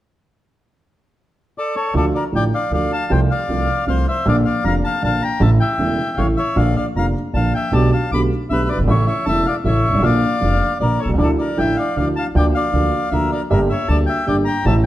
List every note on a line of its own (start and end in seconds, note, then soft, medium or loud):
1.58 1.76 A4 medium
1.58 1.75 D5 medium
1.76 1.94 A4 soft
1.76 1.94 C#5 medium
1.94 2.11 D2 medium
1.94 2.11 D3 medium
1.94 2.11 F3 soft
1.94 2.11 A3 soft
1.94 2.12 F4 medium
1.94 2.06 A4 medium
1.94 2.05 D5 medium
2.15 2.24 A#4 soft
2.15 2.24 D5 medium
2.32 2.50 A1 soft
2.32 2.49 A2 soft
2.32 2.49 D3 soft
2.32 2.49 F3 soft
2.32 2.50 A3 soft
2.32 2.50 F4 soft
2.32 2.44 D5 medium
2.32 2.44 G5 medium
2.55 2.72 D5 medium
2.55 2.72 F5 medium
2.70 2.88 D2 soft
2.70 2.88 D3 soft
2.70 2.88 F3 soft
2.70 2.89 A3 soft
2.70 2.89 F4 soft
2.70 2.91 D5 medium
2.70 2.92 F5 medium
2.92 3.11 F5 medium
2.92 3.12 A5 medium
3.10 3.27 C2 medium
3.10 3.27 C3 medium
3.10 3.27 F3 soft
3.10 3.27 A3 soft
3.10 3.27 F4 medium
3.10 3.20 C5 medium
3.10 3.20 G5 medium
3.31 3.85 D5 medium
3.31 3.86 F5 medium
3.48 3.65 C2 soft
3.48 3.66 C3 soft
3.48 3.65 F3 soft
3.48 3.66 A3 soft
3.48 3.65 F4 soft
3.87 4.03 C2 soft
3.87 4.04 C2 soft
3.87 4.04 C3 soft
3.87 4.04 F3 soft
3.87 4.04 A3 soft
3.87 4.04 F4 soft
3.87 4.07 C5 medium
3.87 4.06 F5 medium
4.08 4.26 C5 medium
4.08 4.27 E5 medium
4.25 4.42 A#1 medium
4.25 4.42 A#2 medium
4.25 4.42 D3 medium
4.25 4.42 F3 medium
4.25 4.42 A#3 medium
4.25 4.42 F4 medium
4.25 4.37 D5 medium
4.25 4.36 F5 medium
4.45 4.64 D5 medium
4.45 4.65 F5 medium
4.64 4.81 F1 medium
4.64 4.81 F1 soft
4.64 4.81 F2 soft
4.64 4.81 D3 soft
4.64 4.80 F3 soft
4.64 4.81 A#3 soft
4.64 4.81 F4 soft
4.64 4.75 F5 medium
4.64 4.73 A#5 medium
4.84 5.03 F5 medium
4.84 5.02 A5 medium
5.02 5.19 A#1 soft
5.02 5.19 A#1 medium
5.02 5.19 A#2 soft
5.02 5.19 D3 soft
5.02 5.19 F3 soft
5.02 5.19 A#3 soft
5.02 5.19 F4 soft
5.02 5.22 F5 medium
5.02 5.23 A5 medium
5.22 5.41 G5 medium
5.22 5.42 A#5 medium
5.40 5.57 A1 medium
5.40 5.57 A2 medium
5.40 5.57 C#3 medium
5.40 5.57 E3 medium
5.40 5.57 A3 medium
5.40 5.58 E4 medium
5.40 5.51 E5 medium
5.40 5.50 A5 medium
5.60 6.15 E5 medium
5.60 6.20 G5 medium
5.78 5.95 E1 soft
5.78 5.96 E1 soft
5.78 5.96 E2 soft
5.78 5.96 C#3 soft
5.78 5.96 E3 soft
5.78 5.96 A3 soft
5.78 5.96 E4 soft
6.17 6.34 A1 soft
6.17 6.35 A1 soft
6.17 6.35 A2 soft
6.17 6.35 C#3 soft
6.17 6.35 E3 soft
6.17 6.35 A3 soft
6.17 6.35 E4 soft
6.17 6.27 C#5 medium
6.17 6.26 F5 medium
6.37 6.57 C#5 medium
6.37 6.58 E5 medium
6.56 6.73 A#1 medium
6.56 6.73 A#2 medium
6.56 6.73 D3 medium
6.56 6.73 F3 medium
6.56 6.73 A#3 soft
6.56 6.73 F4 medium
6.56 6.76 D5 medium
6.56 6.75 F5 medium
6.76 6.86 D5 soft
6.76 6.85 F5 medium
6.95 7.12 F1 soft
6.95 7.13 F1 soft
6.95 7.12 F2 soft
6.95 7.12 D3 soft
6.95 7.13 F3 soft
6.95 7.12 A#3 soft
6.95 7.12 F4 soft
6.95 7.07 F5 medium
6.95 7.05 A#5 medium
7.33 7.50 A#1 soft
7.33 7.51 A#1 soft
7.33 7.50 A#2 soft
7.33 7.51 D3 soft
7.33 7.51 F3 soft
7.33 7.51 A#3 soft
7.33 7.51 F4 soft
7.33 7.54 F5 medium
7.33 7.52 A5 medium
7.54 7.73 E5 medium
7.54 7.74 G5 medium
7.72 7.89 B1 medium
7.72 7.89 B2 medium
7.72 7.89 D3 medium
7.72 7.89 A3 medium
7.72 7.89 B3 soft
7.72 7.89 G4 medium
7.72 7.92 D5 medium
7.72 7.90 A5 medium
7.92 8.11 F5 medium
7.92 8.10 A5 medium
8.11 8.28 B1 medium
8.11 8.29 B1 soft
8.11 8.29 B2 soft
8.11 8.28 D3 soft
8.11 8.29 A3 soft
8.11 8.29 B3 soft
8.11 8.29 G4 soft
8.11 8.22 B5 medium
8.11 8.20 D6 medium
8.50 8.66 B1 soft
8.50 8.67 B1 soft
8.50 8.67 B2 soft
8.50 8.67 D3 soft
8.50 8.67 A3 soft
8.50 8.67 B3 soft
8.50 8.67 G4 soft
8.50 8.69 B4 medium
8.50 8.68 E5 medium
8.69 8.80 B4 medium
8.69 8.78 D5 medium
8.74 8.78 F#1 soft
8.74 8.79 F#1 soft
8.79 8.83 G1 medium
8.79 8.85 G1 soft
8.84 8.87 G#1 medium
8.84 8.89 G#1 medium
8.84 9.04 A1 medium
8.84 9.04 A2 medium
8.84 9.04 C#3 medium
8.84 9.04 E3 medium
8.88 9.04 A3 medium
8.88 9.04 E4 medium
8.88 9.07 C#5 medium
8.88 9.05 E5 medium
9.07 9.26 C#5 medium
9.07 9.25 E5 medium
9.26 9.43 E1 soft
9.26 9.43 E2 soft
9.26 9.43 C#3 soft
9.26 9.43 E3 soft
9.26 9.43 A3 soft
9.26 9.43 E4 soft
9.26 9.46 E5 medium
9.26 9.46 A5 medium
9.46 9.56 D5 medium
9.46 9.54 F5 medium
9.64 9.81 A1 medium
9.64 9.81 A1 soft
9.64 9.81 A2 soft
9.64 9.81 C#3 soft
9.64 9.81 E3 soft
9.64 9.82 A3 soft
9.64 9.82 E4 soft
9.64 10.02 C#5 medium
9.64 10.05 E5 medium
9.88 9.92 G1 soft
9.88 9.94 G1 soft
9.93 9.98 G#1 medium
9.93 9.99 G#1 medium
9.98 10.03 A1 medium
10.02 10.19 A#1 medium
10.02 10.20 A#1 medium
10.02 10.20 A#2 medium
10.02 10.19 D3 medium
10.02 10.19 F3 medium
10.02 10.20 A#3 medium
10.02 10.20 F4 medium
10.02 10.78 D5 medium
10.02 10.77 F5 medium
10.41 10.58 F1 soft
10.41 10.58 F2 soft
10.41 10.58 D3 soft
10.41 10.58 F3 soft
10.41 10.58 A#3 soft
10.41 10.58 F4 soft
10.80 10.97 A#1 soft
10.80 10.97 A#2 soft
10.80 10.97 D3 soft
10.80 10.97 F3 soft
10.80 10.97 A#3 soft
10.80 10.97 F4 soft
10.80 11.00 A#4 medium
10.80 11.01 D5 medium
10.99 11.10 A4 medium
10.99 11.08 C#5 medium
11.05 11.09 B1 soft
11.05 11.10 B1 soft
11.05 11.14 C2 soft
11.09 11.14 C2 soft
11.14 11.19 C#2 medium
11.14 11.18 C#2 medium
11.18 11.35 D2 medium
11.18 11.36 D2 medium
11.18 11.35 D3 medium
11.18 11.35 F3 soft
11.18 11.35 A3 medium
11.18 11.35 E4 medium
11.18 11.28 D5 medium
11.23 11.31 A4 medium
11.39 11.58 A#4 medium
11.39 11.59 D5 medium
11.57 11.74 A1 medium
11.57 11.74 A1 soft
11.57 11.74 A2 soft
11.57 11.74 D3 soft
11.57 11.74 F3 soft
11.57 11.74 A3 soft
11.57 11.74 E4 soft
11.57 11.77 E5 medium
11.57 11.76 G5 medium
11.76 11.97 D5 medium
11.76 11.95 F5 medium
11.96 12.13 D2 medium
11.96 12.13 D2 soft
11.96 12.13 D3 soft
11.96 12.13 F3 soft
11.96 12.13 A3 soft
11.96 12.13 E4 soft
11.96 12.08 D5 medium
11.96 12.05 F5 medium
12.16 12.27 F5 medium
12.16 12.25 A5 medium
12.35 12.51 D2 medium
12.35 12.52 D2 medium
12.35 12.51 D3 medium
12.35 12.51 F3 soft
12.35 12.51 A#3 medium
12.35 12.52 F4 medium
12.35 12.47 D5 medium
12.35 12.45 G5 medium
12.54 13.10 D5 medium
12.54 13.14 F5 medium
12.73 12.89 D2 soft
12.73 12.90 D2 soft
12.73 12.89 D3 soft
12.73 12.90 F3 soft
12.73 12.90 A#3 soft
12.73 12.90 F4 soft
13.11 13.28 D2 soft
13.11 13.29 D2 soft
13.11 13.28 D3 soft
13.11 13.28 F3 soft
13.11 13.29 A#3 soft
13.11 13.29 F4 soft
13.11 13.31 A#4 medium
13.11 13.30 E5 medium
13.32 13.42 A#4 medium
13.32 13.41 D5 medium
13.50 13.67 G1 medium
13.50 13.67 G2 medium
13.50 13.67 D3 medium
13.50 13.67 G3 medium
13.50 13.67 A#3 medium
13.50 13.67 G4 medium
13.50 13.61 A#4 medium
13.50 13.59 E5 medium
13.70 13.89 C#5 medium
13.70 13.88 E5 medium
13.88 14.05 D2 medium
13.88 14.05 D2 soft
13.88 14.05 D3 soft
13.88 14.05 G3 soft
13.88 14.05 A#3 soft
13.88 14.05 G4 soft
13.88 13.99 D5 medium
13.88 13.97 A5 medium
14.06 14.27 E5 medium
14.06 14.25 G5 medium
14.26 14.43 G1 soft
14.26 14.43 G2 soft
14.26 14.43 D3 soft
14.26 14.43 G3 soft
14.26 14.43 A#3 soft
14.26 14.43 G4 soft
14.26 14.37 D5 medium
14.26 14.35 G5 medium
14.45 14.65 G5 medium
14.45 14.66 A#5 medium
14.65 14.81 A1 medium
14.65 14.82 A1 medium
14.65 14.82 A2 medium
14.65 14.82 E3 medium
14.65 14.82 A3 medium
14.65 14.82 C#4 medium
14.65 14.82 A4 medium
14.65 14.76 E5 medium
14.65 14.74 A5 medium